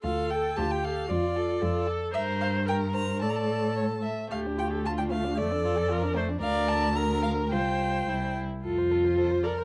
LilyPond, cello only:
\new Staff \with { instrumentName = "Cello" } { \clef bass \time 2/4 \key d \minor \tempo 4 = 112 d,4 d,4 | f,4 f,4 | g,2 | a,4. r8 |
d,2 | f,2 | \key f \major d,2 | c,4 c,8 r8 |
f,2 | }